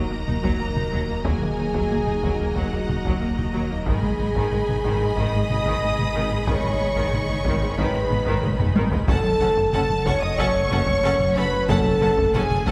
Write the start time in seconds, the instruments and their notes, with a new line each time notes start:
Already playing: sub bass D#1, ambient pad F#3 A#3 D#4 A#4, viola section F#4, french horn section A#4, violin section D#5 A#5
0.10 cello section D#2, analog synth bass D#2, viola section A#3
0.27 double bass section D#2, cello section D#2, analog synth bass D#2, viola section D#4, taiko mid
0.42 cello section D#2, analog synth bass D#2, viola section F#3, taiko
0.59 double bass section D#2, cello section D#2, analog synth bass D#2, viola section A#3
0.75 cello section D#2, analog synth bass D#2, viola section D#4, taiko mid
0.91 double bass section D#2, cello section D#2, analog synth bass D#2, viola section F#3
1.08 cello section D#2, analog synth bass D#2, viola section A#3
1.24 double bass section D#2, cello section D#2, analog synth bass D#2, viola section F#3, french horn section G#4, violin section G#5, taiko
1.41 cello section D#2, analog synth bass D#3, viola section A#3, taiko mid
1.57 double bass section D#2, cello section D#2, analog synth bass D#3, viola section D#4
1.74 cello section D#2, analog synth bass D#2, viola section F#3, taiko
1.90 double bass section D#2, cello section D#2, analog synth bass D#2, viola section A#3, taiko mid
2.06 cello section D#2, analog synth bass D#2, viola section D#4, taiko mid
2.22 double bass section D#2, cello section D#2, analog synth bass D#2, viola section F#3, taiko
2.40 cello section D#2, analog synth bass D#2, viola section A#3
2.55 double bass section D#2, cello section D#2, analog synth bass D#2, viola section F#3, french horn section F#4, violin section F#5, taiko
2.73 cello section D#2, analog synth bass D#2, viola section A#3
2.88 double bass section D#2, cello section D#2, analog synth bass D#2, viola section D#4, taiko mid
3.05 cello section D#2, analog synth bass D#2, viola section F#3, taiko
3.21 double bass section D#2, cello section D#2, analog synth bass D#2, viola section A#3
3.37 cello section D#2, analog synth bass D#2, viola section D#4, taiko mid
3.53 double bass section D#2, cello section D#2, analog synth bass D#2, viola section F#3
3.70 cello section D#2, analog synth bass D#2, viola section A#3
3.86 double bass section G#1, sub bass G#1, cello section G#2, analog synth bass G#2, viola section D#3 G#4, ambient pad D#3 G#3 D#4 B4, french horn section G#4, violin section D#5 G#5 B5, taiko
4.02 cello section G#2, viola section G#3, analog synth bass G#3, taiko mid
4.18 double bass section G#1, cello section G#2, analog synth bass G#3, viola section B3
4.35 cello section G#2, analog synth bass G#2, viola section D#3, taiko
4.51 double bass section G#1, analog synth bass G#2, cello section G#2, viola section G#3, taiko mid
4.68 cello section G#2, analog synth bass G#2, viola section B3, taiko mid
4.84 double bass section G#1, cello section G#2, analog synth bass G#2, viola section D#3, taiko
5.01 cello section G#2, analog synth bass G#2, viola section G#3
5.16 double bass section G#1, cello section G#2, analog synth bass G#2, viola section D#3, french horn section D#5, violin section D#6, taiko
5.34 cello section G#2, analog synth bass G#2, viola section G#3
5.49 double bass section G#1, cello section G#2, analog synth bass G#2, viola section B3, taiko mid
5.66 cello section G#2, analog synth bass G#2, viola section D#3, taiko
5.82 double bass section G#1, analog synth bass G#2, cello section G#2, viola section G#3
5.99 cello section G#2, analog synth bass G#2, viola section B3, taiko mid
6.14 double bass section G#1, analog synth bass G#2, cello section G#2, viola section D#3
6.31 analog synth bass G#2, cello section G#2, viola section G#3
6.47 double bass section G#1, analog synth bass G#2, cello section G#2, viola section D#3, french horn section C#5, violin section C#6, taiko
6.64 cello section G#2, viola section G#3, analog synth bass G#3, taiko mid
6.80 double bass section G#1, cello section G#2, analog synth bass G#3, viola section B3
6.96 cello section G#2, analog synth bass G#2, viola section D#3, taiko
7.12 double bass section G#1, cello section G#2, analog synth bass G#2, viola section G#3, taiko mid
7.28 analog synth bass G#2, cello section G#2, viola section B3, taiko mid
7.45 double bass section G#1, analog synth bass G#2, cello section G#2, viola section D#3, taiko
7.61 cello section G#2, analog synth bass G#2, viola section G#3
7.77 double bass section G#1, analog synth bass G#2, cello section G#2, viola section D#3, french horn section B4, violin section B5, taiko
7.93 analog synth bass G#2, cello section G#2, viola section G#3, taiko rim
8.10 double bass section G#1, analog synth bass G#2, cello section G#2, viola section B3, taiko mid
8.26 analog synth bass G#2, cello section G#2, viola section D#3, taiko
8.42 double bass section G#1, analog synth bass G#2, cello section G#2, viola section G#3, taiko mid
8.59 analog synth bass G#2, cello section G#2, viola section B3, taiko low-mid
8.75 double bass section G#1, analog synth bass G#2, cello section G#2, viola section D#3, taiko high
8.91 analog synth bass G#2, cello section G#2, viola section G#3, taiko low
9.07 double bass section F#1, sub bass F#1, analog synth bass F#2, cello section F#2, ambient pad F#3 A3 C#4 F#4, viola section C#4 A4, french horn section A4, violin section F#5 A5, taiko
9.24 analog synth bass F#3, taiko mid
9.40 double bass section F#1, cello section F#2, analog synth bass F#3, viola section C#4 A4, violin section F#5 A5
9.57 analog synth bass F#2, taiko
9.73 double bass section F#1, analog synth bass F#2, cello section F#2, viola section C#4 A4, french horn section A4, violin section F#5 A5, taiko mid
9.89 analog synth bass F#2, taiko mid
10.05 double bass section F#1, analog synth bass F#2, cello section F#2, viola section C#4 A4, french horn section C#5, violin section F#5 A5 C#6, taiko
10.22 analog synth bass F#2, french horn section D#5, violin section D#6, taiko rim
10.38 double bass section F#1, analog synth bass F#2, cello section F#2, viola section C#4 A4, french horn section C#5, violin section F#5 A5 C#6, taiko
10.56 analog synth bass F#2
10.71 double bass section F#1, cello section F#2, analog synth bass F#2, viola section C#4 A4, violin section F#5 A5, taiko mid
10.87 analog synth bass F#2, taiko
11.03 double bass section F#1, cello section F#2, analog synth bass F#2, viola section C#4 A4, violin section F#5 A5
11.20 analog synth bass F#2, taiko mid
11.36 double bass section F#1, cello section F#2, analog synth bass F#2, viola section C#4 A4, french horn section B4, violin section F#5 A5 B5
11.53 analog synth bass F#2
11.69 double bass section F#1, cello section F#2, analog synth bass F#2, viola section C#4 A4, french horn section A4, violin section F#5 A5, taiko
11.85 analog synth bass F#3, taiko mid
12.01 double bass section F#1, cello section F#2, analog synth bass F#3, viola section C#4 A4, violin section F#5 A5
12.18 analog synth bass F#2, taiko
12.34 double bass section F#1, cello section F#2, analog synth bass F#2, viola section C#4 A4, french horn section G#4, violin section F#5 G#5 A5, taiko mid
12.50 analog synth bass F#2, taiko mid
12.65 double bass section F#1, analog synth bass F#2, cello section F#2, viola section C#4 A4, french horn section F#4, violin section F#5 A5, taiko